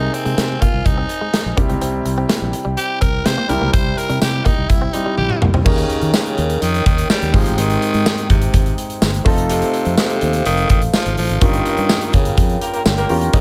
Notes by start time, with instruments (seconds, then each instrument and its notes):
Already playing: grand piano C3 A#3 C4 D#4 G#4, tenor saxophone D#4, brass ensemble D#4 A#4 C5 G#5
0.14 tenor saxophone C4, muted clean electric guitar stroke, closed hi-hat
0.25 fingered electric bass C3, clean electric guitar G#3, closed hi-hat
0.38 fingered electric bass C3, snare, closed hi-hat
0.62 clean electric guitar A#3, tenor saxophone F4, kick, closed hi-hat
0.74 fingered electric bass C2
0.86 fingered electric bass C2, tenor saxophone D#4, kick, closed hi-hat
0.98 clean electric guitar C4
1.09 muted clean electric guitar stroke, closed hi-hat
1.21 clean electric guitar G#3
1.33 muted clean electric guitar stroke, snare, closed hi-hat
1.46 fingered electric bass A#1
1.57 fingered electric bass C2, grand piano C3 G3 C4 E4 G4, clean electric guitar A#3, brass ensemble E4 G4 G5, kick, closed hi-hat
1.70 fingered electric bass C#2, clean electric guitar C4, closed hi-hat
1.81 fingered electric bass C2, clean electric guitar C4, closed hi-hat
2.05 fingered electric bass C2, muted clean electric guitar stroke, closed hi-hat
2.18 clean electric guitar C4
2.29 clean electric guitar A#3, snare, closed hi-hat
2.42 fingered electric bass A#1
2.53 muted clean electric guitar stroke, closed hi-hat
2.65 fingered electric bass C2, clean electric guitar G3
2.77 tenor saxophone G4, closed hi-hat
3.01 fingered electric bass C2, clean electric guitar C4, tenor saxophone A#4, kick, closed hi-hat
3.25 fingered electric bass C3, tenor saxophone C5, snare, closed hi-hat
3.38 clean electric guitar A#3
3.48 fingered electric bass C2, grand piano C3 G3 C4 E4 G4, tenor saxophone A#4, muted clean electric guitar stroke, closed hi-hat
3.62 fingered electric bass C#2, clean electric guitar A#3
3.73 fingered electric bass C2, clean electric guitar C4, tenor saxophone C5, kick, closed hi-hat
3.97 tenor saxophone A#4, muted clean electric guitar stroke, closed hi-hat
4.09 fingered electric bass C3, clean electric guitar G3, closed hi-hat
4.22 fingered electric bass C3, tenor saxophone G4, snare, closed hi-hat, tambourine
4.45 clean electric guitar A#3, tenor saxophone D#4, kick, closed hi-hat
4.58 fingered electric bass C2
4.69 fingered electric bass C2, tenor saxophone E4, kick, closed hi-hat
4.82 clean electric guitar C4
4.93 grand piano G3 C4 E4 G4, tenor saxophone D#4, muted clean electric guitar stroke, closed hi-hat
5.06 clean electric guitar G3
5.18 fingered electric bass A#1, tenor saxophone G4, muted clean electric guitar stroke, high tom
5.30 mid tom
5.42 fingered electric bass C2, clean electric guitar A#3, mid tom
5.54 fingered electric bass C2, clean electric guitar C4, floor tom
5.65 fingered electric bass D#2, tenor saxophone C#3, grand piano D#3 A#3 C#4 D#4 G4 A#4, brass ensemble D#4 A#4 C#5 G5, kick, crash
5.78 closed hi-hat
5.90 closed hi-hat
6.02 fingered electric bass D#3, closed hi-hat
6.14 tenor saxophone C#3, snare, tambourine
6.26 closed hi-hat
6.38 fingered electric bass D#2, closed hi-hat
6.50 closed hi-hat
6.62 fingered electric bass F2, tenor saxophone D#3, closed hi-hat
6.74 closed hi-hat
6.86 fingered electric bass D#2, tenor saxophone D#3, kick, closed hi-hat
6.98 closed hi-hat
7.10 tenor saxophone G3, snare, tambourine
7.22 fingered electric bass D#2, closed hi-hat
7.33 fingered electric bass G#1, grand piano G#2 G#3 C4 D#4 G4 G#4, tenor saxophone F3, brass ensemble G#3 C5, kick, open hi-hat
7.46 fingered electric bass A1, closed hi-hat
7.58 fingered electric bass G#1, tenor saxophone D#3, closed hi-hat
7.70 closed hi-hat
7.82 closed hi-hat
7.94 fingered electric bass G#2, closed hi-hat
8.06 snare, tambourine
8.18 closed hi-hat
8.30 fingered electric bass G#1, tenor saxophone C3, kick, closed hi-hat
8.42 closed hi-hat
8.54 fingered electric bass G#1, kick, closed hi-hat
8.66 closed hi-hat
8.78 closed hi-hat
8.90 closed hi-hat
9.02 fingered electric bass G1, snare, tambourine
9.14 closed hi-hat
9.25 fingered electric bass F1, grand piano A3 C4 D#4 F4 A4, brass ensemble A4 F5, kick, open hi-hat
9.38 closed hi-hat
9.50 tenor saxophone C3, closed hi-hat
9.62 closed hi-hat
9.74 closed hi-hat
9.85 fingered electric bass F2, closed hi-hat
9.97 tenor saxophone C3, snare, tambourine
10.10 closed hi-hat
10.21 fingered electric bass D#2, closed hi-hat
10.33 closed hi-hat
10.45 fingered electric bass F1, tenor saxophone D#3, closed hi-hat
10.57 closed hi-hat
10.69 fingered electric bass A1, tenor saxophone D#3, kick, closed hi-hat
10.82 closed hi-hat
10.94 tenor saxophone F3, snare, tambourine
11.06 fingered electric bass G#1, closed hi-hat
11.17 fingered electric bass A1, tenor saxophone F3, open hi-hat
11.29 fingered electric bass G#1, closed hi-hat
11.41 fingered electric bass G1, grand piano G2 A#3 C#4 F4 G4 A#4, tenor saxophone D#3, brass ensemble F4 A#4 C#5 G5, kick, closed hi-hat
11.53 closed hi-hat
11.66 closed hi-hat
11.77 fingered electric bass G2, closed hi-hat
11.89 snare, tambourine
12.01 closed hi-hat
12.13 fingered electric bass G1, tenor saxophone C#3, kick, closed hi-hat
12.25 closed hi-hat
12.37 fingered electric bass F2, kick, closed hi-hat
12.50 closed hi-hat
12.61 horn section A#3 F4 G4 A#4, closed hi-hat
12.74 horn section A#3 F4 G4 A#4, closed hi-hat
12.86 fingered electric bass G1, snare, tambourine
12.98 horn section A#3 F4 G4 A#4, closed hi-hat
13.09 fingered electric bass E2, grand piano A#3 C#4 F4 G4 A#4, open hi-hat
13.21 closed hi-hat
13.33 fingered electric bass D#2, tenor saxophone C#3, grand piano D#3 A#3 C#4 D#4 G4 A#4, brass ensemble D#4, clean electric guitar D#4, kick, closed hi-hat